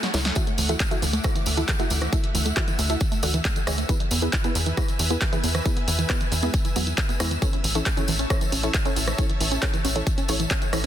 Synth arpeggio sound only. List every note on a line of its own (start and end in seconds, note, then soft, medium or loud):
0.03 0.13 A3 medium
0.14 0.18 C#4 medium
0.25 0.32 G#3 medium
0.36 0.40 E3 loud
0.47 0.54 A3 loud
0.58 0.68 E3 medium
0.69 0.73 E3 loud
0.80 0.87 A3 loud
0.91 1.01 E3 medium
1.02 1.06 E3 loud
1.13 1.20 A3 loud
1.24 1.34 E3 medium
1.35 1.39 E3 loud
1.46 1.53 A3 loud
1.57 1.67 E3 medium
1.68 1.72 E3 loud
1.79 1.86 A3 loud
1.90 2.00 E3 medium
2.02 2.06 E3 loud
2.13 2.19 A3 loud
2.24 2.33 E3 medium
2.35 2.39 E3 loud
2.46 2.52 A3 loud
2.57 2.66 E3 medium
2.68 2.72 E3 loud
2.79 2.85 A3 loud
2.90 3.00 E3 medium
3.01 3.05 E3 loud
3.12 3.19 A3 loud
3.23 3.33 E3 medium
3.34 3.38 E3 loud
3.45 3.52 A3 loud
3.56 3.66 E3 medium
3.67 3.71 E3 loud
3.78 3.85 A3 loud
3.89 3.99 E3 medium
4.00 4.04 E3 loud
4.11 4.18 B3 loud
4.22 4.32 E3 medium
4.33 4.37 E3 loud
4.44 4.51 B3 loud
4.55 4.65 E3 medium
4.66 4.70 E3 loud
4.77 4.84 B3 loud
4.89 4.99 E3 medium
5.00 5.04 E3 loud
5.11 5.17 B3 loud
5.22 5.32 E3 medium
5.33 5.37 E3 loud
5.44 5.50 B3 loud
5.55 5.64 E3 medium
5.66 5.70 E3 loud
5.77 5.83 B3 loud
5.88 5.97 E3 medium
5.99 6.03 E3 loud
6.10 6.16 B3 loud
6.21 6.31 E3 medium
6.32 6.36 E3 loud
6.43 6.50 B3 loud
6.54 6.64 E3 medium
6.65 6.69 E3 loud
6.76 6.83 B3 loud
6.87 6.97 E3 medium
6.98 7.02 E3 loud
7.09 7.16 B3 loud
7.20 7.30 E3 medium
7.31 7.35 E3 loud
7.42 7.46 E3 loud
7.53 7.60 C#4 loud
7.64 7.74 E3 medium
7.75 7.79 E3 loud
7.86 7.93 C#4 loud
7.97 8.07 E3 medium
8.08 8.12 E3 loud
8.19 8.26 C#4 loud
8.30 8.40 E3 medium
8.41 8.45 E3 loud
8.52 8.59 C#4 loud
8.63 8.73 E3 medium
8.74 8.78 E3 loud
8.85 8.92 C#4 loud
8.97 9.06 E3 medium
9.07 9.12 E3 loud
9.19 9.25 C#4 loud
9.30 9.39 E3 medium
9.40 9.45 E3 loud
9.52 9.58 C#4 loud
9.63 9.72 E3 medium
9.74 9.78 E3 loud
9.85 9.91 C#4 loud
9.96 10.06 E3 medium
10.07 10.11 E3 loud
10.18 10.24 C#4 loud
10.29 10.39 E3 medium
10.40 10.44 E3 loud
10.51 10.58 C#4 loud
10.62 10.72 E3 medium
10.73 10.77 E3 loud